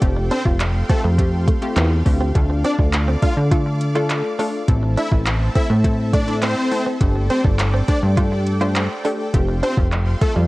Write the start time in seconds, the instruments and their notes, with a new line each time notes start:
Already playing: supersaw synth A4 G5
0.02 analog synth bass F1, synth pluck A3 C4 F4 G4, supersaw synth F5 C6, kick, closed hi-hat
0.17 muted clean electric guitar stroke
0.31 supersaw synth C4 C5, clean electric guitar D4, closed hi-hat
0.45 analog synth bass F1, synth pluck A3 C4 F4 G4, clean electric guitar F4, kick
0.60 muted clean electric guitar stroke, clap, closed hi-hat
0.89 synth pluck A3 C4 F4 G4, supersaw synth A3 A4, clean electric guitar C4, kick, closed hi-hat
1.04 analog synth bass F2, clean electric guitar A3
1.18 synth pluck A3 C4 F4 G4, kick, closed hi-hat
1.48 clean electric guitar A3, kick, closed hi-hat
1.62 synth pluck A3 C4 F4 G4, closed hi-hat
1.76 analog synth bass E2, clean electric guitar C4, clap, closed hi-hat
2.06 analog synth bass D2, synth pluck A3 C4 F4 G4, muted clean electric guitar stroke, kick, open hi-hat
2.20 clean electric guitar C4
2.35 analog synth bass D2, synth pluck A3 D4 F4 A4, supersaw synth D5 D6, kick, closed hi-hat
2.50 muted clean electric guitar stroke
2.64 clean electric guitar C4, supersaw synth D4 D5, closed hi-hat
2.78 analog synth bass D2, synth pluck A3 D4 F4 A4, clean electric guitar D4, kick
2.93 muted clean electric guitar stroke, clap, closed hi-hat
3.08 clean electric guitar C4
3.22 synth pluck A3 D4 F4 A4, clean electric guitar D4, supersaw synth F4 F5, kick, closed hi-hat
3.37 analog synth bass D3
3.51 synth pluck A3 D4 F4 A4, clean electric guitar F4, kick, closed hi-hat
3.66 muted clean electric guitar stroke
3.81 closed hi-hat
3.95 synth pluck A3 D4 F4 A4, clean electric guitar F4, closed hi-hat
4.09 clap, closed hi-hat
4.39 synth pluck A3 D4 F4 A4, clean electric guitar D4, open hi-hat
4.68 analog synth bass A1, synth pluck A3 C4 E4 A4, supersaw synth C4 A4 E5 A5, kick, closed hi-hat
4.83 muted clean electric guitar stroke
4.97 clean electric guitar D4, supersaw synth E4 E5, closed hi-hat
5.12 analog synth bass A1, synth pluck A3 C4 E4 B4, clean electric guitar E4, kick
5.26 muted clean electric guitar stroke, clap, closed hi-hat
5.55 synth pluck A3 C4 E4 A4, clean electric guitar C4, supersaw synth E4 E5, kick, closed hi-hat
5.70 analog synth bass A2, clean electric guitar A3
5.84 synth pluck A3 C4 E4 A4, kick, closed hi-hat
6.14 clean electric guitar A3, supersaw synth D4 D5, kick, closed hi-hat
6.28 synth pluck A3 C4 E4 A4, closed hi-hat
6.42 clean electric guitar C4, supersaw synth C4 C5, clap, closed hi-hat
6.72 synth pluck A3 C4 E4 A4, muted clean electric guitar stroke, open hi-hat
6.86 clean electric guitar C4
7.01 analog synth bass G1, synth pluck A3 D4 G4 A4, supersaw synth D5 G5 D6, kick, closed hi-hat
7.16 muted clean electric guitar stroke
7.30 clean electric guitar C4, supersaw synth C4 C5, closed hi-hat
7.44 analog synth bass G1, synth pluck A3 D4 G4 A4, clean electric guitar D4, kick
7.59 muted clean electric guitar stroke, clap, closed hi-hat
7.74 clean electric guitar C4
7.88 synth pluck A3 D4 G4 C5, clean electric guitar D4, supersaw synth D4 D5, kick, closed hi-hat
8.03 analog synth bass G2
8.17 synth pluck A3 D4 G4 A4, clean electric guitar F4, kick, closed hi-hat
8.32 muted clean electric guitar stroke
8.47 closed hi-hat
8.61 synth pluck A3 D4 G4 C5, clean electric guitar F4, closed hi-hat
8.75 clap, closed hi-hat
9.05 synth pluck A3 D4 G4 A4, clean electric guitar D4, open hi-hat
9.34 analog synth bass F1, synth pluck A3 C4 F4 G4, supersaw synth F5 C6, kick, closed hi-hat
9.49 muted clean electric guitar stroke
9.63 supersaw synth C4 C5, clean electric guitar D4, closed hi-hat
9.77 analog synth bass F1, synth pluck A3 C4 F4 G4, clean electric guitar C4, kick
9.92 muted clean electric guitar stroke, clap, closed hi-hat
10.21 synth pluck A3 C4 F4 A4, clean electric guitar A3, supersaw synth A3 A4, kick, closed hi-hat
10.36 analog synth bass F2, clean electric guitar G3